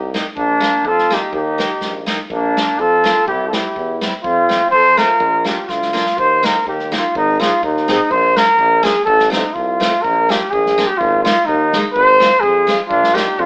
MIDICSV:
0, 0, Header, 1, 6, 480
1, 0, Start_track
1, 0, Key_signature, -2, "major"
1, 0, Tempo, 485437
1, 362, Time_signature, 2, 2, 24, 8
1, 6122, Key_signature, -3, "major"
1, 6604, Tempo, 480000
1, 13381, End_track
2, 0, Start_track
2, 0, Title_t, "Flugelhorn"
2, 0, Program_c, 0, 56
2, 0, Note_on_c, 0, 67, 67
2, 115, Note_off_c, 0, 67, 0
2, 363, Note_on_c, 0, 62, 89
2, 858, Note_on_c, 0, 69, 83
2, 873, Note_off_c, 0, 62, 0
2, 1120, Note_on_c, 0, 67, 78
2, 1134, Note_off_c, 0, 69, 0
2, 1327, Note_off_c, 0, 67, 0
2, 1349, Note_on_c, 0, 67, 78
2, 2037, Note_off_c, 0, 67, 0
2, 2308, Note_on_c, 0, 62, 78
2, 2769, Note_on_c, 0, 69, 91
2, 2783, Note_off_c, 0, 62, 0
2, 3230, Note_off_c, 0, 69, 0
2, 3236, Note_on_c, 0, 67, 90
2, 3416, Note_off_c, 0, 67, 0
2, 3443, Note_on_c, 0, 69, 56
2, 3505, Note_on_c, 0, 67, 77
2, 3520, Note_off_c, 0, 69, 0
2, 3985, Note_off_c, 0, 67, 0
2, 4180, Note_on_c, 0, 65, 91
2, 4634, Note_off_c, 0, 65, 0
2, 4652, Note_on_c, 0, 72, 94
2, 4923, Note_on_c, 0, 70, 82
2, 4938, Note_off_c, 0, 72, 0
2, 5407, Note_off_c, 0, 70, 0
2, 5414, Note_on_c, 0, 67, 64
2, 5628, Note_on_c, 0, 65, 69
2, 5643, Note_off_c, 0, 67, 0
2, 6116, Note_on_c, 0, 72, 79
2, 6131, Note_off_c, 0, 65, 0
2, 6380, Note_on_c, 0, 70, 72
2, 6395, Note_off_c, 0, 72, 0
2, 6601, Note_off_c, 0, 70, 0
2, 6608, Note_on_c, 0, 67, 69
2, 6847, Note_off_c, 0, 67, 0
2, 6889, Note_on_c, 0, 65, 65
2, 7082, Note_off_c, 0, 65, 0
2, 7089, Note_on_c, 0, 63, 85
2, 7325, Note_on_c, 0, 65, 76
2, 7340, Note_off_c, 0, 63, 0
2, 7553, Note_off_c, 0, 65, 0
2, 7564, Note_on_c, 0, 63, 80
2, 8035, Note_on_c, 0, 72, 94
2, 8050, Note_off_c, 0, 63, 0
2, 8296, Note_on_c, 0, 70, 86
2, 8311, Note_off_c, 0, 72, 0
2, 8761, Note_on_c, 0, 68, 78
2, 8776, Note_off_c, 0, 70, 0
2, 8968, Note_off_c, 0, 68, 0
2, 8974, Note_on_c, 0, 69, 92
2, 9226, Note_off_c, 0, 69, 0
2, 9245, Note_on_c, 0, 63, 65
2, 9458, Note_on_c, 0, 65, 77
2, 9473, Note_off_c, 0, 63, 0
2, 9946, Note_on_c, 0, 70, 90
2, 9961, Note_off_c, 0, 65, 0
2, 10233, Note_on_c, 0, 67, 86
2, 10248, Note_off_c, 0, 70, 0
2, 10435, Note_on_c, 0, 68, 84
2, 10450, Note_off_c, 0, 67, 0
2, 10793, Note_on_c, 0, 67, 85
2, 10808, Note_off_c, 0, 68, 0
2, 10904, Note_on_c, 0, 65, 83
2, 10919, Note_off_c, 0, 67, 0
2, 11160, Note_off_c, 0, 65, 0
2, 11166, Note_on_c, 0, 65, 85
2, 11382, Note_on_c, 0, 63, 83
2, 11397, Note_off_c, 0, 65, 0
2, 11715, Note_off_c, 0, 63, 0
2, 11856, Note_on_c, 0, 72, 109
2, 12331, Note_on_c, 0, 68, 89
2, 12346, Note_off_c, 0, 72, 0
2, 12713, Note_off_c, 0, 68, 0
2, 12797, Note_on_c, 0, 65, 86
2, 13068, Note_on_c, 0, 67, 90
2, 13083, Note_off_c, 0, 65, 0
2, 13324, Note_on_c, 0, 65, 86
2, 13339, Note_off_c, 0, 67, 0
2, 13381, Note_off_c, 0, 65, 0
2, 13381, End_track
3, 0, Start_track
3, 0, Title_t, "Trumpet"
3, 0, Program_c, 1, 56
3, 0, Note_on_c, 1, 63, 57
3, 122, Note_off_c, 1, 63, 0
3, 376, Note_on_c, 1, 58, 73
3, 877, Note_on_c, 1, 65, 93
3, 892, Note_off_c, 1, 58, 0
3, 1133, Note_on_c, 1, 63, 73
3, 1148, Note_off_c, 1, 65, 0
3, 1331, Note_off_c, 1, 63, 0
3, 1337, Note_on_c, 1, 63, 75
3, 2031, Note_off_c, 1, 63, 0
3, 2281, Note_on_c, 1, 58, 67
3, 2772, Note_on_c, 1, 65, 75
3, 2787, Note_off_c, 1, 58, 0
3, 3237, Note_off_c, 1, 65, 0
3, 3242, Note_on_c, 1, 64, 78
3, 3420, Note_off_c, 1, 64, 0
3, 3436, Note_on_c, 1, 65, 43
3, 3495, Note_on_c, 1, 64, 64
3, 3510, Note_off_c, 1, 65, 0
3, 3980, Note_off_c, 1, 64, 0
3, 4193, Note_on_c, 1, 60, 65
3, 4640, Note_off_c, 1, 60, 0
3, 4684, Note_on_c, 1, 69, 80
3, 4942, Note_on_c, 1, 65, 67
3, 4957, Note_off_c, 1, 69, 0
3, 5639, Note_off_c, 1, 65, 0
3, 12815, Note_on_c, 1, 62, 82
3, 13085, Note_on_c, 1, 63, 70
3, 13100, Note_off_c, 1, 62, 0
3, 13301, Note_on_c, 1, 62, 71
3, 13316, Note_off_c, 1, 63, 0
3, 13381, Note_off_c, 1, 62, 0
3, 13381, End_track
4, 0, Start_track
4, 0, Title_t, "Steel-string acoustic guitar"
4, 0, Program_c, 2, 25
4, 139, Note_on_c, 2, 58, 51
4, 143, Note_on_c, 2, 63, 56
4, 154, Note_on_c, 2, 67, 64
4, 239, Note_off_c, 2, 58, 0
4, 242, Note_off_c, 2, 63, 0
4, 247, Note_off_c, 2, 67, 0
4, 598, Note_on_c, 2, 58, 58
4, 603, Note_on_c, 2, 62, 45
4, 612, Note_on_c, 2, 65, 56
4, 707, Note_off_c, 2, 58, 0
4, 710, Note_off_c, 2, 62, 0
4, 715, Note_off_c, 2, 65, 0
4, 1091, Note_on_c, 2, 58, 52
4, 1093, Note_on_c, 2, 62, 49
4, 1103, Note_on_c, 2, 65, 59
4, 1192, Note_off_c, 2, 62, 0
4, 1194, Note_off_c, 2, 58, 0
4, 1199, Note_off_c, 2, 65, 0
4, 1563, Note_on_c, 2, 58, 44
4, 1570, Note_on_c, 2, 63, 46
4, 1577, Note_on_c, 2, 67, 41
4, 1669, Note_off_c, 2, 58, 0
4, 1673, Note_off_c, 2, 63, 0
4, 1674, Note_off_c, 2, 67, 0
4, 2041, Note_on_c, 2, 58, 67
4, 2051, Note_on_c, 2, 63, 59
4, 2055, Note_on_c, 2, 67, 61
4, 2151, Note_off_c, 2, 58, 0
4, 2156, Note_off_c, 2, 63, 0
4, 2157, Note_off_c, 2, 67, 0
4, 2541, Note_on_c, 2, 58, 47
4, 2551, Note_on_c, 2, 62, 44
4, 2556, Note_on_c, 2, 65, 49
4, 2644, Note_off_c, 2, 58, 0
4, 2649, Note_off_c, 2, 62, 0
4, 2651, Note_off_c, 2, 65, 0
4, 3004, Note_on_c, 2, 58, 60
4, 3017, Note_on_c, 2, 62, 53
4, 3021, Note_on_c, 2, 65, 68
4, 3116, Note_off_c, 2, 58, 0
4, 3122, Note_off_c, 2, 62, 0
4, 3124, Note_off_c, 2, 65, 0
4, 3490, Note_on_c, 2, 55, 49
4, 3497, Note_on_c, 2, 60, 44
4, 3500, Note_on_c, 2, 64, 51
4, 3599, Note_off_c, 2, 55, 0
4, 3601, Note_off_c, 2, 60, 0
4, 3604, Note_off_c, 2, 64, 0
4, 3969, Note_on_c, 2, 55, 60
4, 3980, Note_on_c, 2, 60, 53
4, 3988, Note_on_c, 2, 64, 64
4, 4077, Note_off_c, 2, 55, 0
4, 4082, Note_off_c, 2, 60, 0
4, 4086, Note_off_c, 2, 64, 0
4, 4439, Note_on_c, 2, 57, 47
4, 4446, Note_on_c, 2, 60, 45
4, 4464, Note_on_c, 2, 65, 47
4, 4549, Note_off_c, 2, 57, 0
4, 4553, Note_off_c, 2, 60, 0
4, 4562, Note_off_c, 2, 65, 0
4, 4918, Note_on_c, 2, 57, 58
4, 4923, Note_on_c, 2, 60, 49
4, 4929, Note_on_c, 2, 65, 61
4, 5025, Note_off_c, 2, 60, 0
4, 5026, Note_off_c, 2, 57, 0
4, 5031, Note_off_c, 2, 65, 0
4, 5385, Note_on_c, 2, 58, 45
4, 5393, Note_on_c, 2, 62, 42
4, 5398, Note_on_c, 2, 65, 55
4, 5500, Note_off_c, 2, 58, 0
4, 5502, Note_off_c, 2, 62, 0
4, 5506, Note_off_c, 2, 65, 0
4, 5864, Note_on_c, 2, 58, 67
4, 5874, Note_on_c, 2, 62, 61
4, 5883, Note_on_c, 2, 65, 73
4, 5982, Note_off_c, 2, 58, 0
4, 5986, Note_off_c, 2, 62, 0
4, 5991, Note_off_c, 2, 65, 0
4, 6356, Note_on_c, 2, 58, 57
4, 6363, Note_on_c, 2, 63, 44
4, 6364, Note_on_c, 2, 67, 60
4, 6469, Note_off_c, 2, 58, 0
4, 6470, Note_off_c, 2, 63, 0
4, 6472, Note_off_c, 2, 67, 0
4, 6842, Note_on_c, 2, 58, 73
4, 6848, Note_on_c, 2, 63, 50
4, 6852, Note_on_c, 2, 67, 58
4, 6952, Note_off_c, 2, 63, 0
4, 6953, Note_off_c, 2, 58, 0
4, 6957, Note_off_c, 2, 67, 0
4, 7321, Note_on_c, 2, 60, 54
4, 7329, Note_on_c, 2, 63, 47
4, 7337, Note_on_c, 2, 68, 63
4, 7431, Note_off_c, 2, 60, 0
4, 7435, Note_off_c, 2, 63, 0
4, 7439, Note_off_c, 2, 68, 0
4, 7805, Note_on_c, 2, 60, 60
4, 7814, Note_on_c, 2, 63, 64
4, 7820, Note_on_c, 2, 68, 68
4, 7911, Note_off_c, 2, 60, 0
4, 7915, Note_off_c, 2, 63, 0
4, 7918, Note_off_c, 2, 68, 0
4, 8290, Note_on_c, 2, 58, 59
4, 8296, Note_on_c, 2, 62, 43
4, 8303, Note_on_c, 2, 65, 69
4, 8392, Note_off_c, 2, 62, 0
4, 8393, Note_off_c, 2, 58, 0
4, 8398, Note_off_c, 2, 65, 0
4, 8753, Note_on_c, 2, 58, 68
4, 8767, Note_on_c, 2, 62, 52
4, 8772, Note_on_c, 2, 65, 71
4, 8863, Note_off_c, 2, 58, 0
4, 8870, Note_off_c, 2, 62, 0
4, 8872, Note_off_c, 2, 65, 0
4, 9226, Note_on_c, 2, 57, 52
4, 9239, Note_on_c, 2, 60, 50
4, 9247, Note_on_c, 2, 65, 51
4, 9341, Note_off_c, 2, 57, 0
4, 9348, Note_off_c, 2, 60, 0
4, 9352, Note_off_c, 2, 65, 0
4, 9725, Note_on_c, 2, 57, 49
4, 9732, Note_on_c, 2, 60, 56
4, 9741, Note_on_c, 2, 65, 69
4, 9835, Note_off_c, 2, 57, 0
4, 9838, Note_off_c, 2, 60, 0
4, 9843, Note_off_c, 2, 65, 0
4, 10216, Note_on_c, 2, 58, 50
4, 10223, Note_on_c, 2, 62, 50
4, 10233, Note_on_c, 2, 65, 49
4, 10323, Note_off_c, 2, 58, 0
4, 10327, Note_off_c, 2, 62, 0
4, 10332, Note_off_c, 2, 65, 0
4, 10703, Note_on_c, 2, 58, 67
4, 10709, Note_on_c, 2, 62, 60
4, 10714, Note_on_c, 2, 65, 62
4, 10806, Note_off_c, 2, 58, 0
4, 10809, Note_off_c, 2, 62, 0
4, 10811, Note_off_c, 2, 65, 0
4, 11173, Note_on_c, 2, 56, 56
4, 11177, Note_on_c, 2, 58, 51
4, 11184, Note_on_c, 2, 63, 55
4, 11279, Note_off_c, 2, 56, 0
4, 11281, Note_off_c, 2, 58, 0
4, 11285, Note_off_c, 2, 63, 0
4, 11663, Note_on_c, 2, 56, 66
4, 11669, Note_on_c, 2, 58, 52
4, 11676, Note_on_c, 2, 63, 73
4, 11762, Note_off_c, 2, 56, 0
4, 11763, Note_off_c, 2, 58, 0
4, 11768, Note_off_c, 2, 63, 0
4, 12125, Note_on_c, 2, 56, 57
4, 12134, Note_on_c, 2, 60, 50
4, 12142, Note_on_c, 2, 65, 52
4, 12230, Note_off_c, 2, 56, 0
4, 12235, Note_off_c, 2, 60, 0
4, 12237, Note_off_c, 2, 65, 0
4, 12595, Note_on_c, 2, 56, 56
4, 12601, Note_on_c, 2, 60, 57
4, 12612, Note_on_c, 2, 65, 76
4, 12704, Note_off_c, 2, 56, 0
4, 12707, Note_off_c, 2, 60, 0
4, 12713, Note_off_c, 2, 65, 0
4, 13073, Note_on_c, 2, 58, 53
4, 13083, Note_on_c, 2, 62, 43
4, 13087, Note_on_c, 2, 65, 48
4, 13185, Note_off_c, 2, 58, 0
4, 13190, Note_off_c, 2, 62, 0
4, 13192, Note_off_c, 2, 65, 0
4, 13381, End_track
5, 0, Start_track
5, 0, Title_t, "Tuba"
5, 0, Program_c, 3, 58
5, 0, Note_on_c, 3, 36, 80
5, 191, Note_off_c, 3, 36, 0
5, 358, Note_on_c, 3, 34, 91
5, 670, Note_off_c, 3, 34, 0
5, 831, Note_on_c, 3, 41, 70
5, 1144, Note_off_c, 3, 41, 0
5, 1308, Note_on_c, 3, 39, 90
5, 1624, Note_off_c, 3, 39, 0
5, 1786, Note_on_c, 3, 34, 64
5, 2106, Note_off_c, 3, 34, 0
5, 2273, Note_on_c, 3, 34, 86
5, 2592, Note_off_c, 3, 34, 0
5, 2752, Note_on_c, 3, 41, 82
5, 3070, Note_off_c, 3, 41, 0
5, 3239, Note_on_c, 3, 36, 85
5, 3554, Note_off_c, 3, 36, 0
5, 3721, Note_on_c, 3, 40, 77
5, 4034, Note_off_c, 3, 40, 0
5, 4196, Note_on_c, 3, 41, 88
5, 4508, Note_off_c, 3, 41, 0
5, 4666, Note_on_c, 3, 41, 75
5, 4979, Note_off_c, 3, 41, 0
5, 5136, Note_on_c, 3, 34, 88
5, 5455, Note_off_c, 3, 34, 0
5, 5622, Note_on_c, 3, 38, 70
5, 5942, Note_off_c, 3, 38, 0
5, 6109, Note_on_c, 3, 39, 81
5, 6425, Note_off_c, 3, 39, 0
5, 6586, Note_on_c, 3, 39, 77
5, 6904, Note_off_c, 3, 39, 0
5, 7079, Note_on_c, 3, 32, 106
5, 7392, Note_off_c, 3, 32, 0
5, 7556, Note_on_c, 3, 39, 90
5, 7867, Note_off_c, 3, 39, 0
5, 8030, Note_on_c, 3, 34, 95
5, 8343, Note_off_c, 3, 34, 0
5, 8509, Note_on_c, 3, 34, 97
5, 8822, Note_off_c, 3, 34, 0
5, 8993, Note_on_c, 3, 33, 100
5, 9309, Note_off_c, 3, 33, 0
5, 9480, Note_on_c, 3, 36, 77
5, 9797, Note_off_c, 3, 36, 0
5, 9966, Note_on_c, 3, 34, 101
5, 10281, Note_off_c, 3, 34, 0
5, 10453, Note_on_c, 3, 34, 84
5, 10763, Note_off_c, 3, 34, 0
5, 10929, Note_on_c, 3, 32, 108
5, 11239, Note_off_c, 3, 32, 0
5, 11406, Note_on_c, 3, 39, 95
5, 11715, Note_off_c, 3, 39, 0
5, 11883, Note_on_c, 3, 32, 110
5, 12191, Note_off_c, 3, 32, 0
5, 12353, Note_on_c, 3, 41, 84
5, 12666, Note_off_c, 3, 41, 0
5, 12826, Note_on_c, 3, 34, 87
5, 13143, Note_off_c, 3, 34, 0
5, 13310, Note_on_c, 3, 41, 86
5, 13381, Note_off_c, 3, 41, 0
5, 13381, End_track
6, 0, Start_track
6, 0, Title_t, "Drums"
6, 146, Note_on_c, 9, 38, 64
6, 245, Note_off_c, 9, 38, 0
6, 363, Note_on_c, 9, 36, 67
6, 462, Note_off_c, 9, 36, 0
6, 615, Note_on_c, 9, 38, 75
6, 714, Note_off_c, 9, 38, 0
6, 837, Note_on_c, 9, 36, 62
6, 936, Note_off_c, 9, 36, 0
6, 973, Note_on_c, 9, 38, 24
6, 1072, Note_off_c, 9, 38, 0
6, 1098, Note_on_c, 9, 38, 67
6, 1197, Note_off_c, 9, 38, 0
6, 1313, Note_on_c, 9, 36, 61
6, 1412, Note_off_c, 9, 36, 0
6, 1573, Note_on_c, 9, 38, 76
6, 1672, Note_off_c, 9, 38, 0
6, 1790, Note_on_c, 9, 36, 52
6, 1790, Note_on_c, 9, 38, 56
6, 1889, Note_off_c, 9, 36, 0
6, 1889, Note_off_c, 9, 38, 0
6, 2048, Note_on_c, 9, 38, 64
6, 2147, Note_off_c, 9, 38, 0
6, 2277, Note_on_c, 9, 36, 73
6, 2376, Note_off_c, 9, 36, 0
6, 2542, Note_on_c, 9, 38, 78
6, 2641, Note_off_c, 9, 38, 0
6, 2759, Note_on_c, 9, 36, 54
6, 2858, Note_off_c, 9, 36, 0
6, 3013, Note_on_c, 9, 38, 58
6, 3112, Note_off_c, 9, 38, 0
6, 3241, Note_on_c, 9, 36, 67
6, 3340, Note_off_c, 9, 36, 0
6, 3490, Note_on_c, 9, 38, 77
6, 3589, Note_off_c, 9, 38, 0
6, 3720, Note_on_c, 9, 36, 54
6, 3819, Note_off_c, 9, 36, 0
6, 3971, Note_on_c, 9, 38, 62
6, 4070, Note_off_c, 9, 38, 0
6, 4196, Note_on_c, 9, 36, 76
6, 4295, Note_off_c, 9, 36, 0
6, 4452, Note_on_c, 9, 38, 76
6, 4551, Note_off_c, 9, 38, 0
6, 4670, Note_on_c, 9, 36, 51
6, 4768, Note_off_c, 9, 36, 0
6, 4925, Note_on_c, 9, 38, 72
6, 5024, Note_off_c, 9, 38, 0
6, 5144, Note_on_c, 9, 36, 70
6, 5243, Note_off_c, 9, 36, 0
6, 5393, Note_on_c, 9, 38, 81
6, 5491, Note_off_c, 9, 38, 0
6, 5624, Note_on_c, 9, 38, 40
6, 5625, Note_on_c, 9, 36, 53
6, 5723, Note_off_c, 9, 38, 0
6, 5724, Note_off_c, 9, 36, 0
6, 5756, Note_on_c, 9, 38, 47
6, 5855, Note_off_c, 9, 38, 0
6, 5888, Note_on_c, 9, 38, 57
6, 5986, Note_off_c, 9, 38, 0
6, 5992, Note_on_c, 9, 38, 49
6, 6091, Note_off_c, 9, 38, 0
6, 6113, Note_on_c, 9, 36, 75
6, 6212, Note_off_c, 9, 36, 0
6, 6371, Note_on_c, 9, 38, 81
6, 6470, Note_off_c, 9, 38, 0
6, 6592, Note_on_c, 9, 36, 57
6, 6692, Note_off_c, 9, 36, 0
6, 6719, Note_on_c, 9, 38, 24
6, 6819, Note_off_c, 9, 38, 0
6, 6852, Note_on_c, 9, 38, 73
6, 6952, Note_off_c, 9, 38, 0
6, 7078, Note_on_c, 9, 36, 78
6, 7178, Note_off_c, 9, 36, 0
6, 7341, Note_on_c, 9, 38, 81
6, 7441, Note_off_c, 9, 38, 0
6, 7556, Note_on_c, 9, 36, 69
6, 7656, Note_off_c, 9, 36, 0
6, 7693, Note_on_c, 9, 38, 25
6, 7793, Note_off_c, 9, 38, 0
6, 7811, Note_on_c, 9, 38, 75
6, 7911, Note_off_c, 9, 38, 0
6, 8034, Note_on_c, 9, 36, 70
6, 8134, Note_off_c, 9, 36, 0
6, 8292, Note_on_c, 9, 38, 87
6, 8392, Note_off_c, 9, 38, 0
6, 8514, Note_on_c, 9, 36, 64
6, 8614, Note_off_c, 9, 36, 0
6, 8772, Note_on_c, 9, 38, 70
6, 8872, Note_off_c, 9, 38, 0
6, 8995, Note_on_c, 9, 36, 77
6, 9095, Note_off_c, 9, 36, 0
6, 9118, Note_on_c, 9, 38, 47
6, 9218, Note_off_c, 9, 38, 0
6, 9249, Note_on_c, 9, 38, 81
6, 9349, Note_off_c, 9, 38, 0
6, 9482, Note_on_c, 9, 36, 56
6, 9582, Note_off_c, 9, 36, 0
6, 9740, Note_on_c, 9, 38, 80
6, 9840, Note_off_c, 9, 38, 0
6, 9970, Note_on_c, 9, 36, 72
6, 10070, Note_off_c, 9, 36, 0
6, 10228, Note_on_c, 9, 38, 81
6, 10328, Note_off_c, 9, 38, 0
6, 10453, Note_on_c, 9, 36, 65
6, 10553, Note_off_c, 9, 36, 0
6, 10586, Note_on_c, 9, 38, 26
6, 10686, Note_off_c, 9, 38, 0
6, 10707, Note_on_c, 9, 38, 71
6, 10807, Note_off_c, 9, 38, 0
6, 10932, Note_on_c, 9, 36, 71
6, 11032, Note_off_c, 9, 36, 0
6, 11183, Note_on_c, 9, 38, 91
6, 11283, Note_off_c, 9, 38, 0
6, 11408, Note_on_c, 9, 36, 57
6, 11508, Note_off_c, 9, 36, 0
6, 11654, Note_on_c, 9, 38, 69
6, 11754, Note_off_c, 9, 38, 0
6, 11883, Note_on_c, 9, 36, 74
6, 11983, Note_off_c, 9, 36, 0
6, 12131, Note_on_c, 9, 38, 80
6, 12231, Note_off_c, 9, 38, 0
6, 12356, Note_on_c, 9, 36, 67
6, 12456, Note_off_c, 9, 36, 0
6, 12607, Note_on_c, 9, 38, 65
6, 12707, Note_off_c, 9, 38, 0
6, 12831, Note_on_c, 9, 36, 75
6, 12931, Note_off_c, 9, 36, 0
6, 12961, Note_on_c, 9, 38, 46
6, 13061, Note_off_c, 9, 38, 0
6, 13092, Note_on_c, 9, 38, 91
6, 13192, Note_off_c, 9, 38, 0
6, 13316, Note_on_c, 9, 36, 61
6, 13381, Note_off_c, 9, 36, 0
6, 13381, End_track
0, 0, End_of_file